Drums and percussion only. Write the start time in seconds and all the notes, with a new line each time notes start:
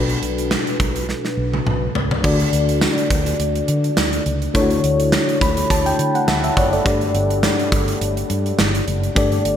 0.09 closed hi-hat
0.23 closed hi-hat
0.38 closed hi-hat
0.51 snare
0.67 closed hi-hat
0.80 kick, closed hi-hat
0.96 closed hi-hat
1.09 snare
1.25 snare
1.54 high tom
1.67 mid tom
1.95 floor tom
2.11 floor tom
2.24 kick, crash
2.40 closed hi-hat
2.53 closed hi-hat
2.69 closed hi-hat
2.81 snare, tambourine
2.98 closed hi-hat
3.10 kick, closed hi-hat
3.26 closed hi-hat
3.40 closed hi-hat
3.56 closed hi-hat
3.68 closed hi-hat
3.84 closed hi-hat
3.97 snare, tambourine
4.13 closed hi-hat
4.26 closed hi-hat
4.42 closed hi-hat
4.55 kick, closed hi-hat
4.71 closed hi-hat
4.84 closed hi-hat
5.00 closed hi-hat
5.12 snare, tambourine
5.29 closed hi-hat
5.41 kick, closed hi-hat
5.57 closed hi-hat
5.70 kick, closed hi-hat
5.86 closed hi-hat
5.99 closed hi-hat
6.15 closed hi-hat
6.28 snare, tambourine
6.44 closed hi-hat
6.57 kick, closed hi-hat
6.73 closed hi-hat
6.86 kick, closed hi-hat
7.01 closed hi-hat
7.15 closed hi-hat
7.30 closed hi-hat
7.43 snare, tambourine
7.59 closed hi-hat
7.72 kick, closed hi-hat
7.88 closed hi-hat
8.01 closed hi-hat
8.17 closed hi-hat
8.30 closed hi-hat
8.46 closed hi-hat
8.59 snare, tambourine
8.75 closed hi-hat
8.88 closed hi-hat
9.03 closed hi-hat
9.16 kick, closed hi-hat
9.32 closed hi-hat
9.45 closed hi-hat